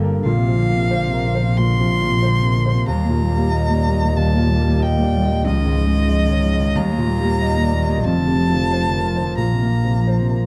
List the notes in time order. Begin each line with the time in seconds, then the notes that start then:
Already playing: G1 G2 D3 G3 A#3 A4 A#4
0.03 A#4
0.24 A#1 A#2 D3 F5
0.38 C3
0.47 F3
0.57 D3
0.69 A#3
0.75 C3
0.91 D3 C5
1.08 C3
1.13 A#4
1.27 D3
1.35 C5
1.43 C3
1.57 A#2 C6
1.61 D3
1.77 C3 F3
1.94 D3
2.02 A#3
2.09 C3
2.23 D3 C5
2.41 C3 A#4
2.57 D3
2.66 C5
2.74 C3
2.87 D#2 G3 A#5
3.04 A#3
3.09 A#2
3.21 G3
3.30 G3
3.38 A#3
3.51 G3 D#5
3.70 A#3 D5
3.88 G3
3.94 D#5
4.03 A#3
4.16 D#2 G3 A5
4.35 A#2 A#3
4.50 G3
4.59 G3
4.68 A#3
4.80 G3 D#5 G5
4.98 A#3
5.02 D5
5.16 G3
5.23 D#5
5.31 A#3
5.44 C#2 F3 D#5
5.61 D#3
5.65 G#2
5.78 F3
5.86 G#3
5.94 D#3
6.09 F3 D#5
6.26 D#3
6.30 C#5
6.43 F3
6.53 D#5
6.60 D#3
6.75 D#2 G3 A#5
6.92 A#3
6.98 A#2
7.09 G3
7.20 G3
7.24 A#3
7.41 G3 D#5
7.57 A#3
7.62 D5
7.72 G3
7.83 D#5
7.88 A#3
8.04 F1 F2 F3 A5
8.20 D3
8.27 C3
8.37 F3
8.48 F3
8.54 D3
8.71 F3 C5
8.87 D3
8.94 A#4
9.03 F3
9.16 C5
9.20 D3
9.36 A#1 A#2 F3 A#5
9.53 C3
9.62 A#3
9.68 F3
9.84 C3 F3
10.02 F3
10.07 C5
10.21 C3
10.29 A#4
10.38 F3